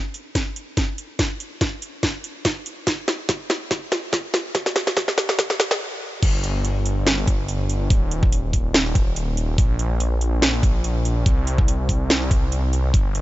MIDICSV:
0, 0, Header, 1, 3, 480
1, 0, Start_track
1, 0, Key_signature, -2, "minor"
1, 0, Tempo, 419580
1, 1364, Time_signature, 4, 2, 24, 8
1, 15117, End_track
2, 0, Start_track
2, 0, Title_t, "Detuned saw bass"
2, 0, Program_c, 0, 39
2, 7123, Note_on_c, 0, 31, 90
2, 9021, Note_off_c, 0, 31, 0
2, 9042, Note_on_c, 0, 27, 90
2, 10941, Note_off_c, 0, 27, 0
2, 10962, Note_on_c, 0, 34, 86
2, 12861, Note_off_c, 0, 34, 0
2, 12882, Note_on_c, 0, 36, 90
2, 14781, Note_off_c, 0, 36, 0
2, 14802, Note_on_c, 0, 31, 85
2, 15117, Note_off_c, 0, 31, 0
2, 15117, End_track
3, 0, Start_track
3, 0, Title_t, "Drums"
3, 163, Note_on_c, 9, 42, 65
3, 277, Note_off_c, 9, 42, 0
3, 402, Note_on_c, 9, 36, 96
3, 403, Note_on_c, 9, 38, 53
3, 403, Note_on_c, 9, 42, 82
3, 517, Note_off_c, 9, 36, 0
3, 518, Note_off_c, 9, 38, 0
3, 518, Note_off_c, 9, 42, 0
3, 643, Note_on_c, 9, 42, 70
3, 758, Note_off_c, 9, 42, 0
3, 882, Note_on_c, 9, 36, 87
3, 883, Note_on_c, 9, 38, 49
3, 883, Note_on_c, 9, 42, 76
3, 997, Note_off_c, 9, 36, 0
3, 998, Note_off_c, 9, 38, 0
3, 998, Note_off_c, 9, 42, 0
3, 1123, Note_on_c, 9, 42, 69
3, 1238, Note_off_c, 9, 42, 0
3, 1362, Note_on_c, 9, 36, 95
3, 1363, Note_on_c, 9, 38, 57
3, 1363, Note_on_c, 9, 42, 80
3, 1477, Note_off_c, 9, 36, 0
3, 1478, Note_off_c, 9, 38, 0
3, 1478, Note_off_c, 9, 42, 0
3, 1604, Note_on_c, 9, 42, 70
3, 1718, Note_off_c, 9, 42, 0
3, 1842, Note_on_c, 9, 36, 93
3, 1844, Note_on_c, 9, 38, 60
3, 1844, Note_on_c, 9, 42, 83
3, 1957, Note_off_c, 9, 36, 0
3, 1958, Note_off_c, 9, 38, 0
3, 1958, Note_off_c, 9, 42, 0
3, 2084, Note_on_c, 9, 42, 71
3, 2198, Note_off_c, 9, 42, 0
3, 2322, Note_on_c, 9, 36, 93
3, 2323, Note_on_c, 9, 38, 62
3, 2323, Note_on_c, 9, 42, 81
3, 2437, Note_off_c, 9, 36, 0
3, 2438, Note_off_c, 9, 38, 0
3, 2438, Note_off_c, 9, 42, 0
3, 2563, Note_on_c, 9, 42, 72
3, 2678, Note_off_c, 9, 42, 0
3, 2802, Note_on_c, 9, 36, 89
3, 2803, Note_on_c, 9, 38, 66
3, 2803, Note_on_c, 9, 42, 79
3, 2917, Note_off_c, 9, 36, 0
3, 2917, Note_off_c, 9, 38, 0
3, 2917, Note_off_c, 9, 42, 0
3, 3043, Note_on_c, 9, 42, 72
3, 3157, Note_off_c, 9, 42, 0
3, 3282, Note_on_c, 9, 36, 96
3, 3282, Note_on_c, 9, 38, 76
3, 3282, Note_on_c, 9, 42, 82
3, 3397, Note_off_c, 9, 36, 0
3, 3397, Note_off_c, 9, 38, 0
3, 3397, Note_off_c, 9, 42, 0
3, 3522, Note_on_c, 9, 38, 78
3, 3522, Note_on_c, 9, 42, 69
3, 3637, Note_off_c, 9, 38, 0
3, 3637, Note_off_c, 9, 42, 0
3, 3762, Note_on_c, 9, 36, 98
3, 3762, Note_on_c, 9, 38, 77
3, 3762, Note_on_c, 9, 42, 87
3, 3877, Note_off_c, 9, 36, 0
3, 3877, Note_off_c, 9, 38, 0
3, 3877, Note_off_c, 9, 42, 0
3, 4002, Note_on_c, 9, 38, 82
3, 4002, Note_on_c, 9, 42, 66
3, 4117, Note_off_c, 9, 38, 0
3, 4117, Note_off_c, 9, 42, 0
3, 4242, Note_on_c, 9, 36, 98
3, 4242, Note_on_c, 9, 38, 82
3, 4242, Note_on_c, 9, 42, 79
3, 4356, Note_off_c, 9, 36, 0
3, 4357, Note_off_c, 9, 38, 0
3, 4357, Note_off_c, 9, 42, 0
3, 4483, Note_on_c, 9, 38, 88
3, 4483, Note_on_c, 9, 42, 67
3, 4597, Note_off_c, 9, 38, 0
3, 4597, Note_off_c, 9, 42, 0
3, 4722, Note_on_c, 9, 36, 94
3, 4723, Note_on_c, 9, 38, 80
3, 4723, Note_on_c, 9, 42, 79
3, 4836, Note_off_c, 9, 36, 0
3, 4837, Note_off_c, 9, 38, 0
3, 4837, Note_off_c, 9, 42, 0
3, 4962, Note_on_c, 9, 38, 90
3, 4962, Note_on_c, 9, 42, 66
3, 5077, Note_off_c, 9, 38, 0
3, 5077, Note_off_c, 9, 42, 0
3, 5202, Note_on_c, 9, 36, 100
3, 5202, Note_on_c, 9, 38, 94
3, 5202, Note_on_c, 9, 42, 78
3, 5316, Note_off_c, 9, 36, 0
3, 5317, Note_off_c, 9, 38, 0
3, 5317, Note_off_c, 9, 42, 0
3, 5333, Note_on_c, 9, 38, 84
3, 5443, Note_off_c, 9, 38, 0
3, 5443, Note_on_c, 9, 38, 98
3, 5443, Note_on_c, 9, 42, 68
3, 5557, Note_off_c, 9, 38, 0
3, 5557, Note_off_c, 9, 42, 0
3, 5573, Note_on_c, 9, 38, 87
3, 5681, Note_on_c, 9, 36, 101
3, 5683, Note_off_c, 9, 38, 0
3, 5683, Note_on_c, 9, 38, 98
3, 5683, Note_on_c, 9, 42, 82
3, 5796, Note_off_c, 9, 36, 0
3, 5797, Note_off_c, 9, 38, 0
3, 5797, Note_off_c, 9, 42, 0
3, 5812, Note_on_c, 9, 38, 79
3, 5922, Note_off_c, 9, 38, 0
3, 5922, Note_on_c, 9, 38, 96
3, 5922, Note_on_c, 9, 42, 67
3, 6037, Note_off_c, 9, 38, 0
3, 6037, Note_off_c, 9, 42, 0
3, 6052, Note_on_c, 9, 38, 91
3, 6161, Note_on_c, 9, 36, 98
3, 6162, Note_off_c, 9, 38, 0
3, 6162, Note_on_c, 9, 38, 103
3, 6162, Note_on_c, 9, 42, 81
3, 6276, Note_off_c, 9, 36, 0
3, 6277, Note_off_c, 9, 38, 0
3, 6277, Note_off_c, 9, 42, 0
3, 6292, Note_on_c, 9, 38, 92
3, 6403, Note_off_c, 9, 38, 0
3, 6403, Note_on_c, 9, 38, 109
3, 6403, Note_on_c, 9, 42, 64
3, 6517, Note_off_c, 9, 38, 0
3, 6517, Note_off_c, 9, 42, 0
3, 6532, Note_on_c, 9, 38, 91
3, 6647, Note_off_c, 9, 38, 0
3, 7122, Note_on_c, 9, 36, 122
3, 7123, Note_on_c, 9, 42, 85
3, 7123, Note_on_c, 9, 49, 105
3, 7237, Note_off_c, 9, 36, 0
3, 7237, Note_off_c, 9, 42, 0
3, 7237, Note_off_c, 9, 49, 0
3, 7363, Note_on_c, 9, 42, 72
3, 7477, Note_off_c, 9, 42, 0
3, 7603, Note_on_c, 9, 42, 82
3, 7717, Note_off_c, 9, 42, 0
3, 7843, Note_on_c, 9, 42, 73
3, 7957, Note_off_c, 9, 42, 0
3, 8084, Note_on_c, 9, 38, 117
3, 8084, Note_on_c, 9, 42, 84
3, 8198, Note_off_c, 9, 38, 0
3, 8198, Note_off_c, 9, 42, 0
3, 8322, Note_on_c, 9, 36, 112
3, 8323, Note_on_c, 9, 42, 73
3, 8437, Note_off_c, 9, 36, 0
3, 8437, Note_off_c, 9, 42, 0
3, 8563, Note_on_c, 9, 42, 78
3, 8677, Note_off_c, 9, 42, 0
3, 8803, Note_on_c, 9, 42, 72
3, 8917, Note_off_c, 9, 42, 0
3, 9042, Note_on_c, 9, 36, 127
3, 9043, Note_on_c, 9, 42, 86
3, 9157, Note_off_c, 9, 36, 0
3, 9157, Note_off_c, 9, 42, 0
3, 9283, Note_on_c, 9, 42, 75
3, 9397, Note_off_c, 9, 42, 0
3, 9412, Note_on_c, 9, 36, 115
3, 9523, Note_on_c, 9, 42, 87
3, 9527, Note_off_c, 9, 36, 0
3, 9638, Note_off_c, 9, 42, 0
3, 9762, Note_on_c, 9, 36, 65
3, 9763, Note_on_c, 9, 42, 74
3, 9877, Note_off_c, 9, 36, 0
3, 9878, Note_off_c, 9, 42, 0
3, 10003, Note_on_c, 9, 38, 119
3, 10003, Note_on_c, 9, 42, 85
3, 10117, Note_off_c, 9, 38, 0
3, 10117, Note_off_c, 9, 42, 0
3, 10242, Note_on_c, 9, 36, 113
3, 10242, Note_on_c, 9, 42, 73
3, 10357, Note_off_c, 9, 36, 0
3, 10357, Note_off_c, 9, 42, 0
3, 10483, Note_on_c, 9, 42, 78
3, 10597, Note_off_c, 9, 42, 0
3, 10722, Note_on_c, 9, 42, 72
3, 10837, Note_off_c, 9, 42, 0
3, 10962, Note_on_c, 9, 36, 127
3, 10963, Note_on_c, 9, 42, 86
3, 11076, Note_off_c, 9, 36, 0
3, 11077, Note_off_c, 9, 42, 0
3, 11203, Note_on_c, 9, 42, 73
3, 11317, Note_off_c, 9, 42, 0
3, 11443, Note_on_c, 9, 42, 85
3, 11557, Note_off_c, 9, 42, 0
3, 11683, Note_on_c, 9, 42, 68
3, 11797, Note_off_c, 9, 42, 0
3, 11923, Note_on_c, 9, 38, 126
3, 11923, Note_on_c, 9, 42, 81
3, 12038, Note_off_c, 9, 38, 0
3, 12038, Note_off_c, 9, 42, 0
3, 12162, Note_on_c, 9, 36, 119
3, 12163, Note_on_c, 9, 42, 73
3, 12277, Note_off_c, 9, 36, 0
3, 12278, Note_off_c, 9, 42, 0
3, 12403, Note_on_c, 9, 42, 79
3, 12518, Note_off_c, 9, 42, 0
3, 12644, Note_on_c, 9, 42, 68
3, 12758, Note_off_c, 9, 42, 0
3, 12882, Note_on_c, 9, 36, 120
3, 12884, Note_on_c, 9, 42, 79
3, 12997, Note_off_c, 9, 36, 0
3, 12998, Note_off_c, 9, 42, 0
3, 13123, Note_on_c, 9, 42, 70
3, 13238, Note_off_c, 9, 42, 0
3, 13252, Note_on_c, 9, 36, 111
3, 13363, Note_on_c, 9, 42, 84
3, 13367, Note_off_c, 9, 36, 0
3, 13478, Note_off_c, 9, 42, 0
3, 13602, Note_on_c, 9, 36, 66
3, 13603, Note_on_c, 9, 42, 67
3, 13717, Note_off_c, 9, 36, 0
3, 13718, Note_off_c, 9, 42, 0
3, 13843, Note_on_c, 9, 38, 117
3, 13843, Note_on_c, 9, 42, 78
3, 13958, Note_off_c, 9, 38, 0
3, 13958, Note_off_c, 9, 42, 0
3, 14082, Note_on_c, 9, 36, 118
3, 14084, Note_on_c, 9, 42, 67
3, 14196, Note_off_c, 9, 36, 0
3, 14198, Note_off_c, 9, 42, 0
3, 14324, Note_on_c, 9, 42, 74
3, 14438, Note_off_c, 9, 42, 0
3, 14564, Note_on_c, 9, 42, 67
3, 14678, Note_off_c, 9, 42, 0
3, 14802, Note_on_c, 9, 36, 119
3, 14804, Note_on_c, 9, 42, 79
3, 14916, Note_off_c, 9, 36, 0
3, 14918, Note_off_c, 9, 42, 0
3, 15043, Note_on_c, 9, 42, 70
3, 15117, Note_off_c, 9, 42, 0
3, 15117, End_track
0, 0, End_of_file